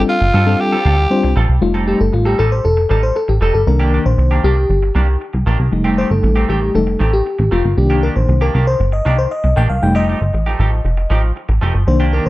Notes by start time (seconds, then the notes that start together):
Already playing: G3 C4 D4 F4 A4
0.08 F4, muted clean electric guitar stroke
0.21 G1, muted clean electric guitar stroke
0.33 G2 G3 C4 F4 A4
0.46 G3 C4 D4 F4 A4
0.59 G4, muted clean electric guitar stroke
0.72 G3 C4 F4 A4
0.85 D2 G3 C4 F4 A4
0.98 muted clean electric guitar stroke
1.10 G3 C4 D4 F4 C5
1.23 C2, muted clean electric guitar stroke
1.36 A#1 G3 C4 F4 A4
1.49 C2, muted clean electric guitar stroke
1.61 F1 G3 A3 D#4 F4, muted clean electric guitar stroke
1.74 G3 C4 D#4 A4
1.87 G3 C4 D#4 G4 A4
2.00 G1 A4, muted clean electric guitar stroke
2.13 A1 F4, muted clean electric guitar stroke
2.25 G3 C4 D#4 G4 A4
2.38 A1 G3 C4 D#4 A4
2.51 C5, muted clean electric guitar stroke
2.64 F1 A4, muted clean electric guitar stroke
2.77 muted clean electric guitar stroke
2.89 A1 G3 C4 D#4 A4
3.02 C5, muted clean electric guitar stroke
3.15 A4, muted clean electric guitar stroke
3.28 A1 G4, muted clean electric guitar stroke
3.41 F1 G3 C4 D#4 A4
3.54 G1 A4, muted clean electric guitar stroke
3.67 C2 D#3 A#3 D4 A#4, muted clean electric guitar stroke
3.80 D#3 A#3 D4 G4
3.92 D#3 A#3 D4 G4
4.05 A#1 C5, muted clean electric guitar stroke
4.18 C2, muted clean electric guitar stroke
4.31 D#3 A#3 D4 G4
4.44 C2 D#3 A#3 D4 G4
4.57 muted clean electric guitar stroke
4.70 G1, muted clean electric guitar stroke
4.83 muted clean electric guitar stroke
4.95 C2 D#3 A#3 D4 G4
5.08 muted clean electric guitar stroke
5.21 muted clean electric guitar stroke
5.33 C2, muted clean electric guitar stroke
5.46 A#1 D#3 A#3 D4 G4
5.59 C2, muted clean electric guitar stroke
5.72 F1 G3 A3 D#4, muted clean electric guitar stroke
5.84 D#3 A3 C4 G4
5.97 D#3 A3 C4 G4 C5
6.10 G1 A4, muted clean electric guitar stroke
6.23 A1, muted clean electric guitar stroke
6.36 D#3 A3 C4 G4
6.48 A1 D#3 A3 C4 G4
6.61 muted clean electric guitar stroke
6.74 F1 G3 A3 D#4 A4, muted clean electric guitar stroke
6.87 muted clean electric guitar stroke
6.99 A1 D#3 A3 C4 G4
7.13 G4, muted clean electric guitar stroke
7.26 muted clean electric guitar stroke
7.39 A1, muted clean electric guitar stroke
7.51 F1 D#3 A3 C4 F4 G4
7.64 G1, muted clean electric guitar stroke
7.77 C2 D#3 A#3 D4 G4, muted clean electric guitar stroke
7.90 D#3 A#3 D4 G4
8.03 D#3 A#3 D4 G4 A#4
8.16 A#1 C5, muted clean electric guitar stroke
8.28 C2, muted clean electric guitar stroke
8.41 D#3 A#3 D4 G4 A#4
8.54 C2 D#3 A#3 D4 G4
8.67 C5, muted clean electric guitar stroke
8.80 G1, muted clean electric guitar stroke
8.92 D#5, muted clean electric guitar stroke
9.05 C2 D#3 A#3 D4 G4
9.18 C5, muted clean electric guitar stroke
9.31 D#5, muted clean electric guitar stroke
9.44 C2, muted clean electric guitar stroke
9.56 A#1 D#3 A#3 D4 G4 G5
9.69 C2 F5, muted clean electric guitar stroke
9.82 F1 G3 A3 D#4 G5, muted clean electric guitar stroke
9.95 F3 A3 D#4 G4 D#5
10.08 F3 A3 D#4 G4
10.21 G1, muted clean electric guitar stroke
10.33 A1, muted clean electric guitar stroke
10.46 F3 A3 D#4 G4
10.59 A1 F3 A3 D#4 G4
10.72 muted clean electric guitar stroke
10.85 F1, muted clean electric guitar stroke
10.97 muted clean electric guitar stroke
11.10 A1 F3 A3 D#4 G4
11.23 muted clean electric guitar stroke
11.36 muted clean electric guitar stroke
11.49 A1, muted clean electric guitar stroke
11.61 F1 F3 A3 D#4 G4
11.74 G1, muted clean electric guitar stroke
11.87 C2 D#3 A#3 D4 C5, muted clean electric guitar stroke
12.00 D#3 A#3 D4 G4
12.13 D#3 A#3 D4 G4 A#4
12.26 A#1 C5, muted clean electric guitar stroke